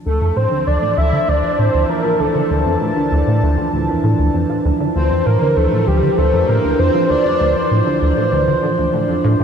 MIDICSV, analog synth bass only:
0, 0, Header, 1, 2, 480
1, 0, Start_track
1, 0, Key_signature, -1, "minor"
1, 0, Tempo, 612245
1, 1723, Time_signature, 4, 2, 24, 8
1, 7400, End_track
2, 0, Start_track
2, 0, Title_t, "Analog synth bass"
2, 0, Program_c, 0, 38
2, 44, Note_on_c, 0, 38, 76
2, 158, Note_off_c, 0, 38, 0
2, 164, Note_on_c, 0, 41, 72
2, 248, Note_off_c, 0, 41, 0
2, 283, Note_on_c, 0, 45, 79
2, 367, Note_off_c, 0, 45, 0
2, 403, Note_on_c, 0, 50, 74
2, 517, Note_off_c, 0, 50, 0
2, 523, Note_on_c, 0, 38, 71
2, 607, Note_off_c, 0, 38, 0
2, 644, Note_on_c, 0, 45, 71
2, 757, Note_off_c, 0, 45, 0
2, 763, Note_on_c, 0, 38, 78
2, 877, Note_off_c, 0, 38, 0
2, 883, Note_on_c, 0, 50, 70
2, 934, Note_off_c, 0, 50, 0
2, 1004, Note_on_c, 0, 38, 73
2, 1117, Note_off_c, 0, 38, 0
2, 1124, Note_on_c, 0, 41, 72
2, 1208, Note_off_c, 0, 41, 0
2, 1243, Note_on_c, 0, 45, 78
2, 1327, Note_off_c, 0, 45, 0
2, 1364, Note_on_c, 0, 38, 72
2, 1448, Note_off_c, 0, 38, 0
2, 1483, Note_on_c, 0, 41, 70
2, 1567, Note_off_c, 0, 41, 0
2, 1602, Note_on_c, 0, 53, 72
2, 1717, Note_off_c, 0, 53, 0
2, 1722, Note_on_c, 0, 38, 98
2, 1773, Note_off_c, 0, 38, 0
2, 1843, Note_on_c, 0, 50, 73
2, 1894, Note_off_c, 0, 50, 0
2, 1964, Note_on_c, 0, 38, 72
2, 2077, Note_off_c, 0, 38, 0
2, 2085, Note_on_c, 0, 41, 72
2, 2168, Note_off_c, 0, 41, 0
2, 2205, Note_on_c, 0, 45, 78
2, 2288, Note_off_c, 0, 45, 0
2, 2324, Note_on_c, 0, 50, 76
2, 2438, Note_off_c, 0, 50, 0
2, 2444, Note_on_c, 0, 38, 72
2, 2528, Note_off_c, 0, 38, 0
2, 2564, Note_on_c, 0, 45, 72
2, 2678, Note_off_c, 0, 45, 0
2, 2685, Note_on_c, 0, 38, 78
2, 2798, Note_off_c, 0, 38, 0
2, 2805, Note_on_c, 0, 50, 72
2, 2854, Note_off_c, 0, 50, 0
2, 2923, Note_on_c, 0, 38, 72
2, 3037, Note_off_c, 0, 38, 0
2, 3044, Note_on_c, 0, 41, 76
2, 3128, Note_off_c, 0, 41, 0
2, 3163, Note_on_c, 0, 45, 77
2, 3247, Note_off_c, 0, 45, 0
2, 3283, Note_on_c, 0, 38, 74
2, 3367, Note_off_c, 0, 38, 0
2, 3403, Note_on_c, 0, 41, 71
2, 3487, Note_off_c, 0, 41, 0
2, 3523, Note_on_c, 0, 53, 73
2, 3637, Note_off_c, 0, 53, 0
2, 3645, Note_on_c, 0, 38, 97
2, 3694, Note_off_c, 0, 38, 0
2, 3765, Note_on_c, 0, 50, 73
2, 3815, Note_off_c, 0, 50, 0
2, 3884, Note_on_c, 0, 38, 76
2, 3998, Note_off_c, 0, 38, 0
2, 4004, Note_on_c, 0, 41, 73
2, 4088, Note_off_c, 0, 41, 0
2, 4125, Note_on_c, 0, 45, 79
2, 4208, Note_off_c, 0, 45, 0
2, 4245, Note_on_c, 0, 50, 74
2, 4358, Note_off_c, 0, 50, 0
2, 4364, Note_on_c, 0, 38, 72
2, 4448, Note_off_c, 0, 38, 0
2, 4485, Note_on_c, 0, 45, 72
2, 4598, Note_off_c, 0, 45, 0
2, 4604, Note_on_c, 0, 38, 77
2, 4718, Note_off_c, 0, 38, 0
2, 4724, Note_on_c, 0, 50, 74
2, 4774, Note_off_c, 0, 50, 0
2, 4844, Note_on_c, 0, 38, 73
2, 4958, Note_off_c, 0, 38, 0
2, 4965, Note_on_c, 0, 41, 75
2, 5048, Note_off_c, 0, 41, 0
2, 5085, Note_on_c, 0, 45, 78
2, 5168, Note_off_c, 0, 45, 0
2, 5205, Note_on_c, 0, 38, 74
2, 5288, Note_off_c, 0, 38, 0
2, 5323, Note_on_c, 0, 41, 72
2, 5407, Note_off_c, 0, 41, 0
2, 5444, Note_on_c, 0, 53, 73
2, 5558, Note_off_c, 0, 53, 0
2, 5564, Note_on_c, 0, 38, 96
2, 5614, Note_off_c, 0, 38, 0
2, 5685, Note_on_c, 0, 50, 75
2, 5734, Note_off_c, 0, 50, 0
2, 5805, Note_on_c, 0, 38, 77
2, 5918, Note_off_c, 0, 38, 0
2, 5924, Note_on_c, 0, 41, 72
2, 6008, Note_off_c, 0, 41, 0
2, 6045, Note_on_c, 0, 45, 78
2, 6128, Note_off_c, 0, 45, 0
2, 6166, Note_on_c, 0, 50, 73
2, 6278, Note_off_c, 0, 50, 0
2, 6286, Note_on_c, 0, 38, 73
2, 6369, Note_off_c, 0, 38, 0
2, 6405, Note_on_c, 0, 45, 72
2, 6518, Note_off_c, 0, 45, 0
2, 6525, Note_on_c, 0, 38, 80
2, 6638, Note_off_c, 0, 38, 0
2, 6645, Note_on_c, 0, 50, 70
2, 6695, Note_off_c, 0, 50, 0
2, 6765, Note_on_c, 0, 50, 74
2, 6848, Note_off_c, 0, 50, 0
2, 6886, Note_on_c, 0, 38, 72
2, 6969, Note_off_c, 0, 38, 0
2, 7006, Note_on_c, 0, 45, 78
2, 7118, Note_off_c, 0, 45, 0
2, 7125, Note_on_c, 0, 41, 74
2, 7208, Note_off_c, 0, 41, 0
2, 7245, Note_on_c, 0, 45, 94
2, 7328, Note_off_c, 0, 45, 0
2, 7365, Note_on_c, 0, 45, 74
2, 7400, Note_off_c, 0, 45, 0
2, 7400, End_track
0, 0, End_of_file